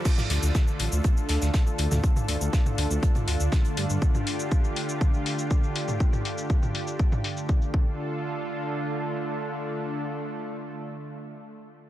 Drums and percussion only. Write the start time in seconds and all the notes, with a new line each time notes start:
0.05 kick, closed hi-hat, crash, shaker
0.18 snare, mid tom, shaker
0.30 snare, closed hi-hat, open hi-hat
0.43 shaker
0.55 kick, snare, closed hi-hat, shaker
0.68 shaker
0.79 closed hi-hat, open hi-hat
0.92 shaker
1.04 kick, closed hi-hat, shaker
1.17 shaker
1.29 snare, closed hi-hat, open hi-hat
1.42 snare, shaker
1.54 kick, snare, closed hi-hat, shaker
1.67 shaker
1.78 closed hi-hat, open hi-hat
1.91 snare, mid tom, shaker
2.04 kick, closed hi-hat, shaker
2.16 mid tom, shaker
2.28 closed hi-hat, open hi-hat
2.41 shaker
2.53 kick, snare, closed hi-hat, shaker
2.66 mid tom, shaker
2.78 closed hi-hat, open hi-hat
2.91 shaker
3.03 kick, closed hi-hat, shaker
3.15 closed hi-hat, mid tom, shaker
3.28 closed hi-hat, open hi-hat
3.40 shaker
3.52 kick, snare, closed hi-hat, shaker
3.65 closed hi-hat, shaker
3.77 closed hi-hat, open hi-hat
3.90 shaker
4.02 kick, shaker
4.15 mid tom, shaker
4.27 open hi-hat
4.39 shaker
4.52 kick, shaker
4.64 shaker
4.76 open hi-hat
4.89 shaker
5.01 kick, shaker
5.14 shaker
5.26 open hi-hat
5.39 shaker
5.51 kick, shaker
5.63 shaker
5.76 open hi-hat
5.88 mid tom, shaker
6.00 kick, shaker
6.13 mid tom, shaker
6.25 open hi-hat
6.38 shaker
6.50 kick, shaker
6.63 mid tom, shaker
6.75 open hi-hat
6.87 shaker
6.99 kick, shaker
7.12 mid tom, shaker
7.24 open hi-hat
7.37 shaker
7.49 kick, shaker
7.62 shaker
7.74 kick